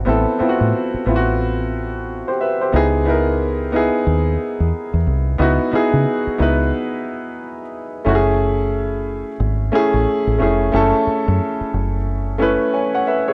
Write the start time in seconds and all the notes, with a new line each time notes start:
Already playing: B3 C4 E4 F#4
0.05 A1 B3 C4 E4 A4
0.39 B3 C4 E4 F4, muted fingered electric bass stroke
0.49 F#4
0.61 A2
0.94 muted fingered electric bass stroke
1.06 A1 B3 C4 E4 F4
1.16 F#4
2.28 G4 C5
2.41 B4 E5
2.61 G4 C5
2.72 C#2 B3 D#4 E4 G#4
3.05 B3 D#4 E4 A#4
3.72 B3 D#4 E4 G#4
4.07 D#2
4.60 E2
4.94 E2
5.07 C2
5.38 C#2 B3 D#4 E4 F#4
5.72 B3 D#4 E4 G#4, muted fingered electric bass stroke
5.94 C#3
6.27 muted fingered electric bass stroke
6.38 C#2 B3 D#4 E4 B4
8.05 F#1 A3 C#4 E4 F#4
8.15 G#4
9.40 G#1
9.72 A3 C#4 E4 G#4
9.94 A1
10.27 A1
10.38 F1 A3 C#4 E4 G#4
10.72 F#1 A3 C#4 E4 A4
11.07 muted fingered electric bass stroke
11.28 F#2
11.61 muted fingered electric bass stroke
11.74 F#1
12.38 A3 C#4 E4 B4
12.74 C#5 G#5
12.95 C#5 F#5
13.07 B4 E5
13.28 G#4 C#5